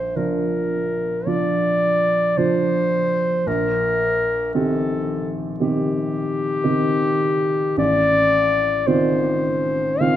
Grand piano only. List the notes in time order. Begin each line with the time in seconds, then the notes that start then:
Already playing: A#1
0.16 F3 D4 F4
1.27 F3 D4 F4
2.37 F3 D4 F4
3.47 A#1
4.55 D#3 C4 G4
5.60 D#3 C4 G4
6.64 D#3 C4 G4
7.77 A1
8.87 D#3 C4 F4
10.00 D#3 C4 F4